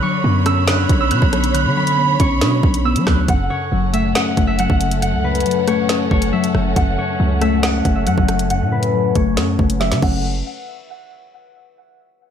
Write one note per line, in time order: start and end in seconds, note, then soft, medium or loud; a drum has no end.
0.00 0.89 D3 medium
0.00 3.25 D3 medium
0.00 1.11 F#3 medium
0.00 3.25 C#5 medium
0.00 3.25 B5 medium
0.00 1.29 C#6 medium
0.00 0.46 E6 medium
0.00 0.67 F#6 medium
0.24 0.87 F#2 loud
0.24 1.10 B3 medium
0.46 0.88 C#4 loud
0.46 1.00 E6 medium
0.46 cross-stick loud
0.46 closed hi-hat medium
0.68 1.77 D4 medium
0.68 1.11 F#6 medium
0.68 snare loud
0.68 closed hi-hat medium
0.89 1.13 B1 loud
0.89 1.98 C#4 medium
0.89 kick loud
0.89 closed hi-hat medium
1.00 2.14 E6 medium
1.11 1.21 B2 loud
1.11 1.96 B3 medium
1.11 1.54 F#6 medium
1.11 closed hi-hat medium
1.22 1.67 B1 loud
1.22 kick medium
1.33 1.75 F#3 medium
1.33 cross-stick medium
1.33 closed hi-hat medium
1.44 closed hi-hat medium
1.54 2.63 D3 medium
1.54 2.60 F#6 loud
1.54 closed hi-hat medium
1.65 2.17 D3 loud
1.76 2.85 F#3 medium
1.76 3.12 B5 medium
1.87 closed hi-hat medium
1.98 2.84 B3 medium
2.20 2.43 B1 loud
2.20 2.62 C#4 loud
2.20 3.46 C#6 medium
2.20 kick loud
2.20 closed hi-hat medium
2.41 2.62 B2 loud
2.41 3.28 D4 medium
2.41 snare loud
2.41 closed hi-hat medium
2.63 2.97 B1 loud
2.63 3.28 C#4 medium
2.63 kick loud
2.74 closed hi-hat medium
2.85 3.28 B3 loud
2.85 3.99 E6 medium
2.96 3.06 F#3 loud
2.96 closed hi-hat medium
3.07 3.28 D2 loud
3.07 3.28 F#3 medium
3.07 4.13 F#6 medium
3.07 kick loud
3.07 cross-stick loud
3.07 snare medium
3.28 3.49 F#1 loud
3.28 4.37 F#2 medium
3.28 9.98 C#4 medium
3.28 9.98 A4 medium
3.28 9.98 F#5 medium
3.28 4.15 F#5 medium
3.28 kick loud
3.28 closed hi-hat medium
3.50 4.59 C#3 medium
3.50 5.41 C#5 medium
3.72 4.14 F#1 loud
3.72 4.58 F#3 medium
3.93 4.37 A3 loud
3.93 4.47 E5 medium
3.93 closed hi-hat medium
4.15 5.24 C#4 medium
4.15 4.59 F#5 medium
4.15 snare loud
4.15 closed hi-hat medium
4.37 4.68 F#1 loud
4.37 5.46 A3 medium
4.37 kick medium
4.37 closed hi-hat medium
4.47 6.20 E5 medium
4.59 5.45 F#3 loud
4.59 5.02 F#5 medium
4.59 closed hi-hat medium
4.70 5.15 F#1 loud
4.70 kick medium
4.80 5.23 C#3 medium
4.80 closed hi-hat medium
4.91 closed hi-hat medium
5.02 6.11 F#2 medium
5.02 6.63 F#5 loud
5.02 closed hi-hat medium
5.13 5.44 C#2 loud
5.24 6.33 C#3 medium
5.24 7.29 B4 medium
5.35 closed hi-hat medium
5.40 closed hi-hat medium
5.46 6.32 F#3 medium
5.46 closed hi-hat medium
5.51 closed hi-hat medium
5.68 6.09 A3 medium
5.68 6.11 C#5 medium
5.68 cross-stick medium
5.68 closed hi-hat medium
5.89 6.98 C#4 medium
5.89 snare loud
5.89 closed hi-hat medium
6.11 6.32 F#1 loud
6.11 7.20 A3 medium
6.11 6.98 C#5 medium
6.11 kick medium
6.22 closed hi-hat medium
6.33 7.19 F#3 loud
6.33 7.41 E5 medium
6.44 closed hi-hat medium
6.55 6.75 F#1 loud
6.55 6.97 C#3 medium
6.55 cross-stick medium
6.76 6.97 F#1 loud
6.76 7.85 F#2 medium
6.76 7.62 F#5 medium
6.76 kick loud
6.76 closed hi-hat medium
6.98 8.07 C#3 medium
6.98 8.90 C#5 medium
7.20 7.82 C#2 loud
7.20 8.06 F#3 medium
7.41 7.84 A3 loud
7.41 7.95 E5 medium
7.41 cross-stick medium
7.41 closed hi-hat medium
7.63 8.72 C#4 medium
7.63 8.07 F#5 medium
7.63 snare loud
7.63 closed hi-hat medium
7.85 8.08 F#1 loud
7.85 8.94 A3 medium
7.85 kick loud
7.85 closed hi-hat medium
7.95 9.68 E5 medium
8.07 8.17 F#2 loud
8.07 8.93 F#3 loud
8.07 8.50 F#5 medium
8.07 closed hi-hat medium
8.18 8.63 F#1 loud
8.18 kick medium
8.28 8.71 C#3 medium
8.28 cross-stick medium
8.28 closed hi-hat medium
8.39 closed hi-hat medium
8.50 9.59 F#2 loud
8.50 8.70 F#5 medium
8.50 closed hi-hat medium
8.61 9.13 A2 loud
8.72 9.81 C#3 medium
8.72 9.13 B4 medium
8.83 closed hi-hat medium
8.94 9.79 F#3 medium
9.15 9.39 F#1 loud
9.15 9.57 A3 loud
9.15 9.77 C#5 medium
9.15 kick loud
9.15 closed hi-hat medium
9.37 9.58 F#2 loud
9.37 10.01 C#4 medium
9.37 snare loud
9.37 closed hi-hat medium
9.59 9.93 F#1 loud
9.59 10.01 A3 medium
9.59 kick medium
9.70 closed hi-hat medium
9.80 10.01 F#3 medium
9.80 10.00 E5 medium
9.80 snare medium
9.92 10.02 C#3 loud
9.92 snare medium
9.92 closed hi-hat medium
10.02 10.43 F#1 loud
10.02 10.23 C#3 medium
10.02 10.23 F#3 medium
10.02 10.23 A3 medium
10.02 10.23 C#4 medium
10.02 10.23 A4 medium
10.02 10.23 F#5 medium
10.02 kick loud
10.02 crash medium